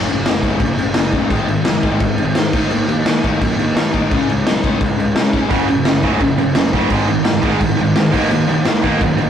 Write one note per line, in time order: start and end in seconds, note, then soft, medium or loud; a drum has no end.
0.07 0.22 F#1 medium
0.07 0.23 F#2 medium
0.07 0.24 C#3 medium
0.07 crash medium
0.25 0.39 F#1 medium
0.25 0.41 F#2 medium
0.25 0.42 C#3 medium
0.25 snare loud
0.25 crash medium
0.42 0.57 F#1 medium
0.42 0.59 F#2 medium
0.42 0.60 C#3 medium
0.42 0.60 F#3 loud
0.42 kick medium
0.42 crash medium
0.60 0.74 A#1 medium
0.60 0.76 F#2 medium
0.60 0.77 C#3 medium
0.60 kick loud
0.60 crash medium
0.77 0.91 F#1 medium
0.77 0.94 F#2 medium
0.77 0.94 C#3 medium
0.77 crash medium
0.94 1.22 F#1 medium
0.94 1.12 F#2 medium
0.94 1.12 C#3 medium
0.94 snare loud
0.94 crash medium
1.12 1.29 F#2 medium
1.12 1.30 C#3 loud
1.12 1.30 F#3 medium
1.12 kick medium
1.12 crash medium
1.29 1.44 G#1 loud
1.29 1.46 G#2 medium
1.29 1.47 D#3 medium
1.29 1.47 G#3 loud
1.29 kick loud
1.29 crash medium
1.47 1.61 G#1 medium
1.47 1.63 G#2 medium
1.47 1.64 D#3 medium
1.47 crash soft
1.65 1.79 F#1 medium
1.65 1.81 G#2 medium
1.65 1.82 D#3 medium
1.65 snare loud
1.65 crash medium
1.83 1.97 G#1 medium
1.83 1.99 G#2 medium
1.83 2.00 D#3 loud
1.83 2.00 G#3 medium
1.83 kick medium
1.83 crash medium
2.00 2.14 G#1 loud
2.00 2.16 G#2 medium
2.00 2.17 D#3 medium
2.00 kick loud
2.00 crash medium
2.18 2.32 G#1 medium
2.18 2.34 G#2 medium
2.18 2.34 D#3 medium
2.18 crash medium
2.35 2.49 G#2 medium
2.35 2.51 G#2 medium
2.35 2.52 D#3 medium
2.35 snare loud
2.35 crash medium
2.53 2.67 D#2 medium
2.53 2.70 D#3 medium
2.53 2.70 A#3 medium
2.53 2.70 D#4 loud
2.53 kick loud
2.53 crash medium
2.70 2.84 D#2 loud
2.70 2.87 D#3 medium
2.70 2.87 A#3 medium
2.70 crash medium
2.89 3.02 D#2 medium
2.89 3.04 D#3 medium
2.89 3.05 A#3 medium
2.89 crash medium
3.05 3.19 D#2 medium
3.05 3.22 D#3 medium
3.05 3.22 A#3 medium
3.05 snare loud
3.05 crash medium
3.23 3.37 D#2 medium
3.23 3.39 D#3 medium
3.23 3.40 A#3 medium
3.23 3.40 D#4 loud
3.23 kick medium
3.23 crash medium
3.41 3.55 F#2 medium
3.41 3.57 D#3 medium
3.41 3.57 A#3 medium
3.41 kick loud
3.41 crash medium
3.58 3.72 D#2 medium
3.58 3.74 D#3 medium
3.58 3.75 A#3 medium
3.58 crash medium
3.76 4.03 D#2 medium
3.76 3.92 D#3 medium
3.76 3.92 A#3 medium
3.76 snare loud
3.76 crash medium
3.93 4.09 D#3 medium
3.93 4.10 A#3 loud
3.93 4.10 D#4 loud
3.93 kick medium
3.93 crash medium
4.11 4.25 C#2 loud
4.11 4.28 C#3 medium
4.11 4.28 G#3 loud
4.11 4.29 C#4 loud
4.11 kick loud
4.11 crash medium
4.29 4.42 C#2 loud
4.29 4.44 C#3 medium
4.29 4.45 G#3 medium
4.29 crash medium
4.45 4.59 B1 medium
4.45 4.62 C#3 medium
4.45 4.62 G#3 medium
4.45 snare loud
4.45 crash medium
4.63 4.77 C#2 medium
4.63 4.80 C#3 medium
4.63 4.79 G#3 loud
4.63 4.81 C#4 loud
4.63 kick medium
4.63 crash medium
4.81 4.94 C#2 loud
4.81 4.96 C#3 medium
4.81 4.97 G#3 medium
4.81 kick loud
4.81 crash medium
4.97 5.12 C#2 medium
4.97 5.14 C#3 medium
4.97 5.14 G#3 medium
4.97 crash medium
5.15 5.43 C#3 medium
5.15 5.32 C#3 medium
5.15 5.32 G#3 medium
5.15 snare loud
5.15 crash medium
5.33 5.50 C#3 medium
5.33 5.50 G#3 loud
5.33 5.50 C#4 loud
5.33 kick medium
5.33 crash medium
5.50 5.64 F#1 loud
5.50 5.67 F#2 medium
5.50 5.67 C#3 medium
5.50 5.68 F#3 loud
5.50 kick loud
5.50 crash medium
5.68 5.82 F#1 loud
5.68 5.84 F#2 medium
5.68 5.84 C#3 medium
5.68 crash medium
5.85 6.00 F#1 medium
5.85 6.02 F#2 medium
5.85 6.02 C#3 medium
5.85 snare loud
5.85 crash medium
6.03 6.17 F#1 medium
6.03 6.19 F#2 medium
6.03 6.19 C#3 medium
6.03 6.20 F#3 medium
6.03 kick medium
6.03 crash medium
6.20 6.34 A#1 medium
6.20 6.36 F#2 medium
6.20 6.37 C#3 medium
6.20 kick loud
6.20 crash medium
6.38 6.52 F#1 medium
6.38 6.54 F#2 medium
6.38 6.54 C#3 medium
6.38 crash medium
6.55 6.83 F#1 medium
6.55 6.72 F#2 medium
6.55 6.72 C#3 medium
6.55 snare loud
6.55 crash medium
6.73 6.90 F#2 medium
6.73 6.90 C#3 loud
6.73 6.91 F#3 loud
6.73 kick medium
6.73 crash medium
6.90 7.04 G#1 loud
6.90 7.07 G#2 medium
6.90 7.07 D#3 loud
6.90 7.08 G#3 medium
6.90 kick loud
6.90 crash medium
7.08 7.22 G#1 medium
7.08 7.24 G#2 medium
7.08 7.24 D#3 medium
7.08 crash medium
7.25 7.40 F#1 medium
7.25 7.42 G#2 medium
7.25 7.42 D#3 medium
7.25 snare loud
7.25 crash medium
7.43 7.57 G#1 medium
7.43 7.60 G#2 medium
7.43 7.60 D#3 loud
7.43 7.60 G#3 loud
7.43 kick medium
7.43 crash medium
7.61 7.75 G#1 loud
7.61 7.77 G#2 medium
7.61 7.77 D#3 medium
7.61 kick loud
7.61 crash medium
7.78 7.92 G#1 medium
7.78 7.95 G#2 medium
7.78 7.95 D#3 medium
7.78 crash medium
7.96 8.10 G#2 medium
7.96 8.12 G#2 medium
7.96 8.12 D#3 medium
7.96 snare loud
7.96 crash medium
8.12 8.27 D#2 medium
8.12 8.30 D#3 medium
8.12 8.29 F#3 medium
8.12 8.31 A#3 loud
8.12 8.31 D#4 loud
8.12 kick medium
8.12 crash medium
8.30 8.45 D#2 loud
8.30 8.47 D#3 medium
8.30 8.46 F#3 medium
8.30 8.47 A#3 medium
8.30 crash medium
8.48 8.62 D#2 loud
8.48 8.64 D#3 medium
8.48 8.64 F#3 medium
8.48 8.64 A#3 medium
8.48 crash medium
8.65 8.80 D#2 medium
8.65 8.82 D#3 medium
8.65 8.81 F#3 medium
8.65 8.83 A#3 medium
8.65 snare loud
8.65 crash medium
8.82 8.97 D#2 medium
8.82 9.00 D#3 medium
8.82 8.99 F#3 loud
8.82 9.01 A#3 medium
8.82 kick medium
8.82 crash medium
8.86 9.01 D#4 loud
9.01 9.15 F#2 loud
9.01 9.17 D#3 medium
9.01 9.16 F#3 medium
9.01 9.18 A#3 medium
9.01 kick loud
9.01 crash medium
9.18 9.30 D#2 medium
9.18 9.30 D#3 medium
9.18 9.30 F#3 medium
9.18 9.30 A#3 medium
9.18 crash medium